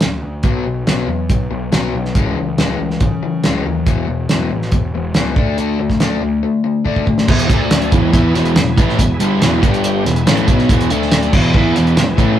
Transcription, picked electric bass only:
0.01 D2
0.23 D2
0.44 B1
0.66 B1
0.86 B1
1.07 E2
1.30 B1
1.50 B1
1.71 B1
1.94 B1
2.15 C#2
2.36 C#2
2.58 C#2
2.78 C#2
3.01 C#3
3.44 C#2
3.65 D#2
3.87 E1
4.07 E1
4.30 E1
4.51 A1
4.72 E1
4.94 E1
5.16 C#2
5.37 D2
5.59 D2
5.80 D2
6.01 D2
6.22 D2
7.29 E1
7.50 D2
7.92 E1
8.13 E2
8.35 E1
8.56 E1
8.78 A1
8.99 E1
9.19 G1
9.41 E1
9.63 G1
10.05 E1
10.27 A1
10.48 B1
10.70 E1
10.90 D2
11.33 E1
11.54 E2
11.76 E1
11.98 E1
12.18 A1

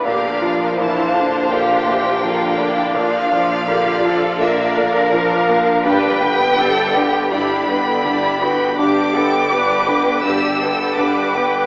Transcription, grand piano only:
0.05 A#2
0.42 F3
0.78 A#3
1.14 F3
1.51 A#2
1.86 A#3
2.23 F3
2.59 A#3
2.95 A#2
3.32 F3
3.68 A#3
4.05 F3
4.40 A#2
4.77 A#3
5.13 F3
5.49 A#3
5.85 G2
6.23 D3
6.60 B3
6.96 D3
7.33 G2
7.70 B3
8.06 D3
8.42 B3
8.79 G2
9.15 D3
9.52 B3
9.88 D3
10.25 G2
10.62 B3
10.99 D3
11.36 B3

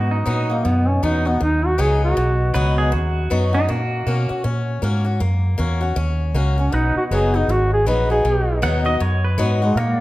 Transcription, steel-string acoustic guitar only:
Already playing: F#2
0.26 F#3 B3 D#4 F#4
0.50 D#4 F#4
0.65 B2
1.03 F#3 B3 D#4 F#4
1.25 D#4 F#4
1.40 F#2
1.78 F#3 B3 D#4 F#4
2.17 B2
2.54 F#3 B3 D#4 F#4
2.92 F#2
3.30 F#3 B3 D#4 F#4
3.53 D#4 F#4
3.69 A#3
4.07 A#3 C#4 F#4
4.29 C#4 F#4
4.44 C#4
4.82 A#3 C#4 F#4
5.05 C#4 F#4
5.20 A#3
5.58 A#3 C#4 F#4
5.81 C#4 F#4
5.96 C#4
6.34 A#3 C#4 F#4
6.58 C#4 F#4
6.72 B2
7.11 F#3 B3 D#4 F#4
7.34 D#4 F#4
7.49 F#2
7.86 F#3 B3 D#4 F#4
8.10 D#4 F#4
8.25 B2
8.62 F#3 B3 D#4 F#4
8.85 D#4 F#4
9.00 F#2
9.38 F#3 B3 D#4 F#4
9.62 D#4 F#4
9.77 A#3

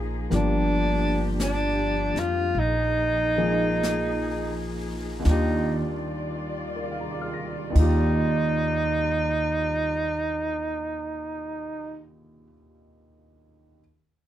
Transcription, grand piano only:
Already playing: F3 G#3 A#3 D#4 G#4
0.30 F3 G3 A#3 D4 G4
3.37 F3 G#3 A#3 D#4 G#4
5.19 D#2 D#3
5.25 D4 F4
5.31 G4
6.76 A#4
6.83 D5
6.91 F5
7.01 A#5
7.11 D6
7.21 F6
7.33 A#6
7.70 D#2 D#3
7.76 D#4 F4
7.81 G4

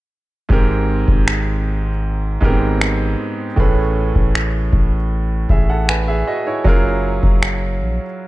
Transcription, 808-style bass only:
0.50 G#1
1.08 G#1
2.42 G#1
3.58 A1
4.16 A1
4.73 A1
5.50 A1
6.65 F#1
7.23 F#1
7.81 A#1

